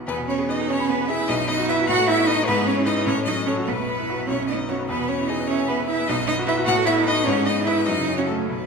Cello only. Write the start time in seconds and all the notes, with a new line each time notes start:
0.08 B3
0.28 C#4
0.49 D#4
0.70 C#4
0.90 B3
1.10 E4
1.29 D#4
1.49 D#4
1.69 E4
1.89 F#4
2.08 E4
2.27 D#4
2.47 B3
2.67 C#4
2.86 D#4
3.07 C#4
3.27 D#4
3.46 C#4
3.67 B3
3.75 A3
3.81 B3
4.26 C#4
4.49 D#4
4.69 C#4
4.89 B3
5.09 C#4
5.28 D#4
5.47 C#4
5.67 B3
5.88 E4
6.08 D#4
6.27 D#4
6.46 E4
6.65 F#4
6.85 E4
7.04 D#4
7.24 C#4
7.45 D#4
7.65 E4
7.86 D#4
8.18 C#4
8.30 A3
8.49 B3